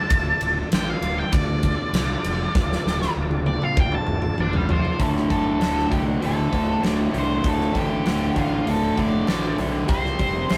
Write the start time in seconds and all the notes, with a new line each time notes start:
Already playing: A5
0.10 D1 D4 F4 A4 D5, kick, ride
0.41 D1 D4 F4 A4 D5, ride
0.72 A1 D4 F4 A4 D5 G5, snare, ride
0.90 F5
1.01 D1 D4 F4 A4 D5, ride
1.19 G5
1.32 D2 D4 F4 A4 D5, kick, ride
1.63 D4 F4 A4 D5, kick, ride
1.93 C2 D5, snare, ride
1.97 D4 F4 A4
2.24 F1 D4 F4 A4 D5, ride
2.55 D1 D4, kick, snare
2.60 F4 A4 D5
2.72 snare
2.85 D1 D4 F4 A4 D5, snare
3.02 snare
3.16 D1, high tom
3.20 D4 F4 A4 D5
3.31 high tom
3.46 D5, high tom
3.53 D4 F4 A4 D5
3.62 F5, mid tom
3.77 D1 G5, kick, mid tom
3.83 D4 F4 A4 D5
3.92 A5, mid tom
4.07 D1, mid tom
4.11 D4 F4 A4 D5
4.22 mid tom
4.38 A1 A4 D5, mid tom
4.42 D4 F4 C5
4.53 G5, floor tom
4.69 D4 F4 A4 C5 F5, floor tom
4.73 D5
4.85 floor tom
4.99 D1 D2 A2 D3 A4, kick, open hi-hat
5.16 snare
5.30 G1 D2 A2 D3 A4, kick, open hi-hat
5.59 D1 D2 A2 D3, snare, open hi-hat
5.78 snare
5.90 C2 D2 A2 D3 G4, kick, open hi-hat
6.20 D1 D2 A2 D3, open hi-hat
6.26 A4
6.49 D1 D2 A2 D3, kick, open hi-hat
6.80 D1 D2 A2 D3, open hi-hat
6.85 D5, snare
7.11 C2 D2 A2 D3, open hi-hat
7.18 C5
7.41 D1 D2 A2 D3, kick, open hi-hat
7.48 A4
7.60 snare
7.73 A1 D2 A2 D3, kick, open hi-hat
7.78 G4
8.04 D1 D2 A2 D3, snare, open hi-hat
8.36 A1 D2 A2 D3 F4, kick, open hi-hat
8.65 D1 D2 A2 D3, open hi-hat
8.69 A4
8.96 F1 D2 A2 D3 D5, kick, open hi-hat
9.27 A1 D2 A2 D3, snare, open hi-hat
9.58 B1 D2 A2 D3, open hi-hat
9.88 C2 C3 G3 C4 C5, kick, open hi-hat
10.05 snare
10.19 F1 C3 G3 C4, kick, open hi-hat
10.49 C2 C3 G3 C4, snare, open hi-hat